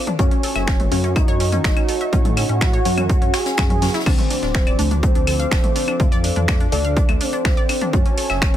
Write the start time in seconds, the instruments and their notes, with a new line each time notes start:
Already playing: synth stab D3 A3 D4, ambient pad D4 A4 F5, analog synth pad F4 D5 D6
0.07 synth arpeggio sound D4, closed hi-hat, mid tom
0.19 detuned saw bass F#2, synth stab F#3 C#4 F#4, synth arpeggio sound A3, analog synth lead C#4, ambient pad F#4, analog synth pad F#4 C#5 C#6, kick, closed hi-hat
0.31 synth arpeggio sound C#4, closed hi-hat
0.43 synth arpeggio sound A4, closed hi-hat, open hi-hat
0.55 detuned saw bass F#1, synth arpeggio sound E5, snare, closed hi-hat, claves
0.60 ambient pad C#5
0.67 synth arpeggio sound C#4, finger snap, kick, snare, closed hi-hat
0.80 synth arpeggio sound A3, closed hi-hat, mid tom
0.92 detuned saw bass F#2, synth stab F#3 C#4 F#4, synth arpeggio sound C#4, closed hi-hat, open hi-hat
1.04 synth arpeggio sound C#4, closed hi-hat
1.15 analog synth lead D#4, synth arpeggio sound E4, ambient pad F#5, kick, closed hi-hat, claves
1.28 detuned saw bass F#2, synth arpeggio sound C#5, closed hi-hat
1.40 synth arpeggio sound C#4, open hi-hat
1.52 synth arpeggio sound C#4, closed hi-hat, mid tom
1.64 detuned saw bass F#1, synth arpeggio sound A3, finger snap, kick, snare, closed hi-hat
1.77 synth arpeggio sound C#4, closed hi-hat, claves
1.88 synth arpeggio sound A4, closed hi-hat, open hi-hat
2.00 synth arpeggio sound E5, closed hi-hat
2.13 detuned saw bass A2, synth stab F#3 C#4 F#4, synth arpeggio sound C#4, kick, closed hi-hat
2.25 synth arpeggio sound A3, closed hi-hat, mid tom
2.37 synth arpeggio sound C#4, closed hi-hat, open hi-hat, claves
2.49 detuned saw bass A2, synth arpeggio sound C#4, closed hi-hat
2.61 synth arpeggio sound E4, analog synth lead F#4, finger snap, kick, snare, closed hi-hat
2.73 synth arpeggio sound C#5, closed hi-hat
2.85 detuned saw bass F#2, synth stab F#3 C#4 F#4, synth arpeggio sound C#4, closed hi-hat, open hi-hat
2.97 synth arpeggio sound C#4, closed hi-hat, mid tom, claves
3.09 synth arpeggio sound A3, kick, closed hi-hat
3.22 detuned saw bass F#2, synth arpeggio sound C#4, closed hi-hat
3.33 analog synth lead G#4, synth arpeggio sound C#5, finger snap, snare, closed hi-hat, open hi-hat
3.46 synth arpeggio sound C#4, snare, closed hi-hat
3.57 detuned saw bass F#2, synth stab F#3 C#4 F#4, synth arpeggio sound C#4, finger snap, kick, snare, closed hi-hat, claves
3.70 synth arpeggio sound C#4, closed hi-hat, mid tom
3.82 synth stab F#3 C#4 F#4, synth arpeggio sound B3, snare, closed hi-hat, open hi-hat
3.87 snare, closed hi-hat
3.94 synth arpeggio sound E4, snare, closed hi-hat
4.00 snare, closed hi-hat
4.06 detuned saw bass D2, synth stab D3 A3 D4, analog synth pad F3 C5 D6, analog synth lead C4, ambient pad D4, synth arpeggio sound D4, kick, closed hi-hat, crash, claves
4.18 synth arpeggio sound A3, closed hi-hat, mid tom
4.24 ambient pad A4
4.30 synth arpeggio sound D4, closed hi-hat, open hi-hat
4.42 detuned saw bass D1, synth arpeggio sound D4, snare, closed hi-hat
4.54 synth arpeggio sound F4, finger snap, kick, snare, closed hi-hat
4.67 synth arpeggio sound D5, closed hi-hat, claves
4.75 detuned saw bass D2, synth stab D3 A3 D4, synth arpeggio sound D4, ambient pad F5, open hi-hat
4.79 closed hi-hat
4.91 synth arpeggio sound D4, closed hi-hat, mid tom
5.03 synth arpeggio sound A3, analog synth lead C4, kick, closed hi-hat
5.15 detuned saw bass D2, synth arpeggio sound D4, closed hi-hat
5.27 synth arpeggio sound A4, open hi-hat, claves
5.39 synth arpeggio sound F5, closed hi-hat
5.51 detuned saw bass D1, synth arpeggio sound D4, finger snap, kick, snare, closed hi-hat
5.64 synth arpeggio sound A3, closed hi-hat, mid tom
5.75 synth arpeggio sound D4, closed hi-hat, open hi-hat
5.88 synth arpeggio sound D4, closed hi-hat, claves
6.00 detuned saw bass F2, synth stab D3 A3 D4, synth arpeggio sound F4, kick, closed hi-hat
6.12 synth arpeggio sound D5, closed hi-hat
6.24 synth arpeggio sound D4, closed hi-hat, open hi-hat
6.36 detuned saw bass F2, synth arpeggio sound D4, closed hi-hat, mid tom
6.48 synth arpeggio sound A3, analog synth lead D4, finger snap, kick, snare, closed hi-hat, claves
6.60 synth arpeggio sound D4, closed hi-hat
6.72 detuned saw bass D2, synth stab D3 A3 D4, synth arpeggio sound A4, closed hi-hat, open hi-hat
6.84 synth arpeggio sound F5, closed hi-hat
6.96 synth arpeggio sound D4, kick, closed hi-hat
7.09 detuned saw bass D2, synth arpeggio sound A3, closed hi-hat, mid tom, claves
7.21 analog synth lead C4, synth arpeggio sound D4, closed hi-hat, open hi-hat
7.33 synth arpeggio sound D4, closed hi-hat
7.45 detuned saw bass D2, synth arpeggio sound F4, finger snap, kick, snare, closed hi-hat
7.57 synth arpeggio sound D5, closed hi-hat
7.69 synth arpeggio sound D4, closed hi-hat, open hi-hat, claves
7.81 synth arpeggio sound D4, closed hi-hat, mid tom
7.93 detuned saw bass F#2, synth stab F#3 C#4 F#4, synth arpeggio sound A3, analog synth lead C#4, ambient pad F#4, analog synth pad F#4 C#5 A5 C#6, kick, closed hi-hat
8.06 synth arpeggio sound C#4, closed hi-hat
8.17 synth arpeggio sound A4, closed hi-hat, open hi-hat
8.29 detuned saw bass F#1, synth arpeggio sound E5, snare, closed hi-hat, claves
8.42 synth arpeggio sound C#4, finger snap, kick, snare, closed hi-hat